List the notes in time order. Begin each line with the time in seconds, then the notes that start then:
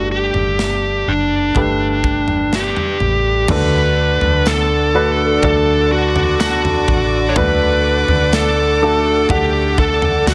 Already playing: G1 G2 G3 A3 D4 A4
0.11 G4
0.34 G1, floor tom
0.59 snare
1.07 F#1 D4
1.55 G1 A3 D4 G4 B4, kick, floor tom
2.04 kick
2.28 floor tom
2.53 G4, snare
2.77 floor tom
3.00 A1, floor tom
3.48 D2 D3 A3 D4 F#4 A4 B4 D5 F#5 D6, kick, floor tom, crash
4.21 D2, floor tom
4.46 A4, snare, tambourine
4.94 A3 D4 F#4 B4
5.42 D2 A3 D4 F#4 A4, kick, floor tom
5.92 F#4
6.16 floor tom
6.40 F#4, snare, tambourine
6.65 floor tom
6.88 A1, kick, floor tom
7.29 C#5
7.36 D2 D3 A3 D4 F#4 B4, kick, floor tom
8.08 D2, floor tom
8.32 A4, snare, tambourine
8.82 A3 D4 F#4 A4
9.29 D2 A3 D4 G4 A4 F#5, kick, floor tom
9.78 A4, kick
10.02 floor tom
10.26 D2 F#4, snare, tambourine